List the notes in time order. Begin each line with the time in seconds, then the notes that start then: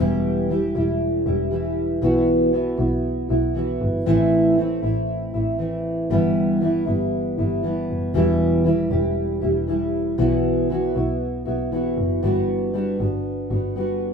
0.00 E1 E2 B2 E3 G3 E4 G4
0.49 E3 G3 E4 G4
0.75 E1 E3 G3 E4 G4
1.26 E1 E3 G3 E4 G4
1.51 E3 G3 E4 G4
2.02 B1 B2 E3 B3 E4 F#4
2.53 E3 B3 E4 F#4
2.77 B1 B3 E4 F#4
3.29 B1 B3 E4 F#4
3.54 E3 B3 E4 F#4
3.81 G1
4.06 A1 A2 E3 A3 C4 E4
4.57 E3 A3 C4 E4
4.82 A1 A3 C4 E4
5.34 A1 A3 C4 E4
5.59 E3 A3 C4 E4
6.10 G1 G2 D3 E3 G3 B3 E4
6.61 E3 G3 B3 E4
6.86 G1 E3 G3 B3 E4
7.38 G1 E3 G3 B3 E4
7.63 E3 G3 B3 E4
7.89 F#1
8.14 E1 E2 B2 E3 G3 E4 G4
8.64 E3 G3 E4 G4
8.90 E1 E3 G3 E4 G4
9.41 E1 E3 G3 E4 G4
9.67 E3 G3 E4 G4
10.18 B1 B2 E3 B3 E4 F#4
10.70 E3 B3 E4 F#4
10.95 B1 B3 E4 F#4
11.45 B1 B3 E4 F#4
11.71 E3 B3 E4 F#4
11.98 F#1
12.23 G1 G3 B3 D4 F#4
12.73 G3 B3 D4 F#4
12.99 G1 B3 D4 F#4
13.50 G1 B3 D4 F#4
13.75 G3 B3 D4 F#4